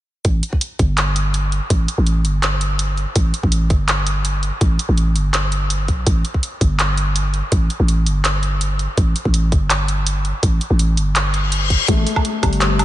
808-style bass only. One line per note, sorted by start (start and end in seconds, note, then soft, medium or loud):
0.25 0.42 A1 loud
0.79 1.61 G1 medium
1.70 1.87 A1 loud
1.98 2.26 A1 loud
2.25 3.06 G1 medium
3.16 3.33 A1 loud
3.43 3.72 A1 loud
3.70 4.51 G1 medium
4.61 4.78 A1 loud
4.89 5.17 A1 loud
5.15 5.90 G1 medium
5.88 6.05 B1 medium
6.07 6.23 A1 loud
6.61 7.42 G1 medium
7.52 7.69 A1 loud
7.80 8.08 A1 loud
8.06 8.88 G1 medium
8.97 9.14 A1 loud
9.25 9.54 A1 loud
9.52 10.33 G1 medium
10.43 10.60 A1 loud
10.70 10.99 A1 loud
10.97 11.79 G1 medium
11.88 12.05 A1 loud
12.43 12.85 G1 medium